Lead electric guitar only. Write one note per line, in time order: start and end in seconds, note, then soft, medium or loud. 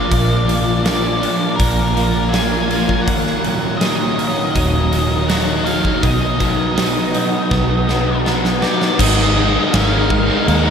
0.00 0.83 D5 medium
0.85 1.55 D5 medium
1.56 1.93 A#4 medium
1.94 2.33 A#4 medium
2.29 3.01 G#5 medium
3.02 3.81 F#5 loud
3.77 4.50 D#5 loud
4.51 5.30 D#5 medium
5.28 5.65 F#5 medium
5.65 6.04 F5 medium
6.03 8.21 D#5 medium
8.62 8.99 D5 medium
8.99 9.75 D#5 medium
9.75 10.48 F5 loud
10.49 10.70 F#5 medium